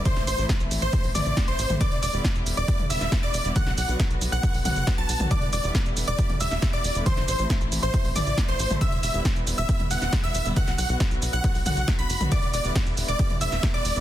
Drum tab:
RD |----------------|----------------|----------------|----------------|
HH |xxoxxxoxxooxxxox|xxoxxxoxxxoxxxox|xxoxxxo-xooxxxox|xxoxxxoxxxoxxxox|
SH |x-xxxxxxx-xxx-xx|x-xxxxxxx-xxx-xx|x-xxxxxxx-xxx-xx|x-xxxxxxx-xxx-xx|
SD |-o--o-------o---|----o------oo---|-o--o-------o---|----o------oo---|
T2 |o---------o----o|o--------o------|o---------o----o|o--------o------|
BD |o---o---o---o---|o---o---o---o---|o---o---o---o---|o---o---o---o---|

RD |----------------|----------------|----------------|x---x---x---x---|
HH |xxoxxxoxxooxxxox|xxoxxxoxxxoxxxox|xxo-xxoxxooxxxox|xxoxxxoxxxoxxxox|
SH |x-xxxxxxx-xxx-xx|x-xxxxxxx-xxx-xx|xxxxxxxxxxxxxxxx|x-xxxxxxx-xxx-xx|
SD |-o--o-------o---|----o------oo---|-o--o-------o---|----o------oo---|
T2 |o---------o----o|o--------o------|o---------o----o|o--------o------|
BD |o---o---o---o---|o---o---o---o---|o---o---o---o---|o---o---o---o---|